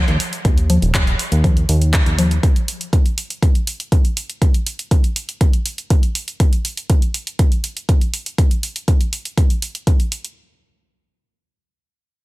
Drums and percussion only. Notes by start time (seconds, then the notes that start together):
0.08 closed hi-hat
0.20 open hi-hat
0.33 closed hi-hat
0.45 kick, closed hi-hat
0.58 closed hi-hat
0.70 open hi-hat, low conga
0.82 closed hi-hat
0.95 kick, clap, closed hi-hat
1.07 closed hi-hat
1.19 open hi-hat
1.32 closed hi-hat
1.44 kick, closed hi-hat, low conga
1.57 closed hi-hat
1.69 open hi-hat
1.82 closed hi-hat
1.94 kick, clap, closed hi-hat
2.06 closed hi-hat
2.19 open hi-hat, low conga
2.31 closed hi-hat
2.43 kick, closed hi-hat
2.56 closed hi-hat
2.68 open hi-hat
2.81 closed hi-hat
2.93 kick, closed hi-hat
3.06 closed hi-hat
3.18 open hi-hat
3.30 closed hi-hat
3.42 kick, closed hi-hat
3.55 closed hi-hat
3.67 open hi-hat
3.80 closed hi-hat
3.92 kick, closed hi-hat
4.05 closed hi-hat
4.17 open hi-hat
4.30 closed hi-hat
4.42 kick, closed hi-hat
4.54 closed hi-hat
4.67 open hi-hat
4.79 closed hi-hat
4.91 kick, closed hi-hat
5.04 closed hi-hat
5.16 open hi-hat
5.29 closed hi-hat
5.41 kick, closed hi-hat
5.53 closed hi-hat
5.66 open hi-hat
5.78 closed hi-hat
5.90 kick, closed hi-hat
6.03 closed hi-hat
6.15 open hi-hat
6.28 closed hi-hat
6.40 kick, closed hi-hat
6.53 closed hi-hat
6.65 open hi-hat
6.77 closed hi-hat
6.90 kick, closed hi-hat
7.02 closed hi-hat
7.14 open hi-hat
7.27 closed hi-hat
7.39 kick, closed hi-hat
7.52 closed hi-hat
7.64 open hi-hat
7.77 closed hi-hat
7.89 kick, closed hi-hat
8.01 closed hi-hat
8.14 open hi-hat
8.26 closed hi-hat
8.38 kick, closed hi-hat
8.51 closed hi-hat
8.63 open hi-hat
8.76 closed hi-hat
8.88 kick, closed hi-hat
9.01 closed hi-hat
9.13 open hi-hat
9.25 closed hi-hat
9.38 kick, closed hi-hat
9.50 closed hi-hat
9.62 open hi-hat
9.75 closed hi-hat
9.87 kick, closed hi-hat
10.00 closed hi-hat
10.12 open hi-hat
10.25 closed hi-hat